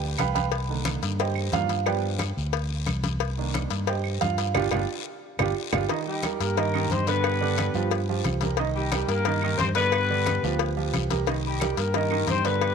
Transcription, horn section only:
6.07 G3 D#4 G4
6.42 A#3 G4 A#4
6.91 C4 G4 C5
7.08 B3 G4 B4
8.76 G3 D#4 G4
9.08 A#3 G4 A#4
9.58 C4 G4 C5
9.75 B3 G4 B4
11.46 G3 D#4 G4
11.79 A#3 G4 A#4
12.29 C4 G4 C5
12.45 B3 G4 B4

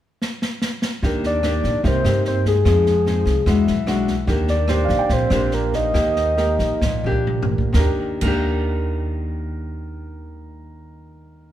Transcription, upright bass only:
1.03 D#2
1.64 A#1
1.84 C2
2.04 G2
2.65 F2
3.26 C2
3.46 E2
3.68 B1
4.27 D#2
4.89 A#1
5.10 A#1
5.30 A#1
5.94 D#2
6.59 A#1
6.81 A#1
7.04 A#1
7.74 D#2
8.22 D#2

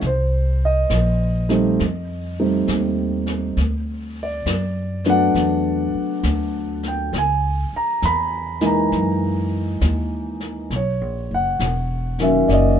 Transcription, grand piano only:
0.07 C5
0.65 D#5
1.49 G3 A3 C4 D#4
2.40 G3 A3 C4 D#4
4.23 D5
5.06 F#3 A3 B3 D4
5.10 F#5
6.88 G5
7.18 G#5
7.76 A#5
8.05 B5
8.61 E3 G#3 A#3 D#4
8.66 A#5
10.76 C#5
11.34 F#5
12.20 D#3 F#3 A#3 C#4 E5
12.48 D5
12.53 D#5

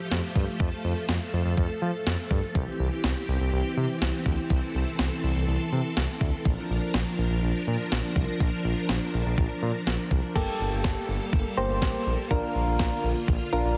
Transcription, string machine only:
Already playing: F3 A3 G4
0.60 A4
2.55 E3 C4 G4
4.50 A4
6.45 F3 D4 A#4
10.35 G3 A#3 A4
12.31 D3 F4

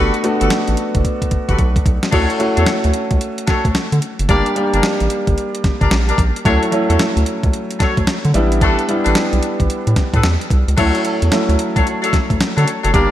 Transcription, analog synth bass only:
Already playing: G1
0.42 G1
0.68 A1
0.95 G1
1.32 G1
1.49 G1
1.59 B1
1.86 B1
2.13 D2
2.57 E2
2.85 D2
3.11 C#2
3.48 D2
3.65 D2
3.92 D3
4.20 F#1
4.29 G1
4.74 G1
5.01 A1
5.28 G1
5.64 G1
5.82 G1
5.92 A#1
6.19 A#1
6.45 D2
6.90 E2
7.17 D2
7.44 C#2
7.81 D2
7.98 D2
8.25 D3
8.35 A1
9.06 A1
9.33 B1
9.60 A1
9.87 A2
10.14 A2
10.24 E2
10.51 C2
10.68 C#2
10.78 D2
11.22 E2
11.49 D2
11.76 C#2
12.13 D2
12.30 D2
12.57 D3
12.85 F#1
12.94 G1

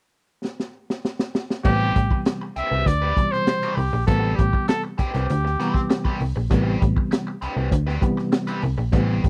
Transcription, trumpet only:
1.64 G4
2.57 E5
2.87 D5
3.32 C5
3.76 G4
4.07 A4
4.36 G4
4.69 A4
4.99 G4

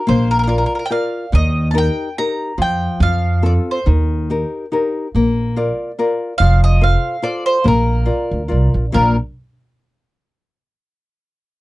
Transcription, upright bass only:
0.09 A#1
1.33 D#2
2.58 F2
3.00 F2
3.87 D#2
5.15 A#1
6.40 F1
7.66 A#1
8.31 D2
8.52 C2
8.74 A#1
8.95 A#1

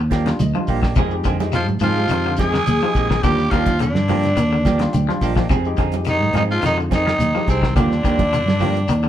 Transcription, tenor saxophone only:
1.55 F4
1.83 F4
2.40 G#4
3.24 G4
3.52 F4
3.82 D4
6.09 D#4
6.37 D#4
6.51 F4
6.66 D#4
6.94 D#4
7.50 C4
7.77 D4

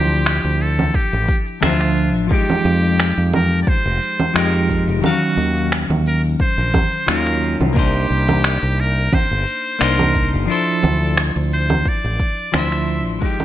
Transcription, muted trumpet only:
Already playing: G4
0.62 A4
0.96 G4
1.64 F4
2.32 G4
3.35 A#4
3.63 D5
3.69 C5
4.37 A#4
5.05 F#4
6.08 A#4
6.42 C5
7.09 A#4
7.78 G4
8.80 A#4
9.14 C5
9.83 A#4
10.51 A4
11.54 C5
11.88 D5
12.57 E5
13.24 G4

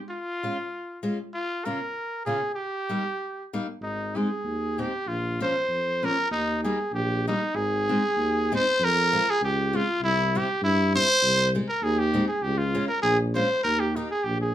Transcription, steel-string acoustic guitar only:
0.43 G#3 C#4 F4
1.03 G#3 C#4 F4
1.65 C#3 A#3 C#4 F4
2.26 C#3 A#3 C#4 F4
2.89 G3 A#3 D#4
3.53 G3 A#3 D#4
4.15 G#3 C4 D#4
4.78 G#3 C4 D#4
5.40 F3 A#3 C#4
6.03 F3 A#3 C#4
6.64 G3 A#3 D#4
7.28 G3 A#3 D#4
7.89 G#3 C4 D#4
8.52 G#3 C4 D#4
9.13 G#3 C4 F4
9.73 G#3 C4 F4
10.35 G3 C4 E4
10.95 G3 C4 E4
11.55 G#3 C4 D#4
12.14 G#3 C4 D#4
12.75 G#3 C#4 F4
13.35 G#3 C#4 F4
13.96 A#3 D#4 G4

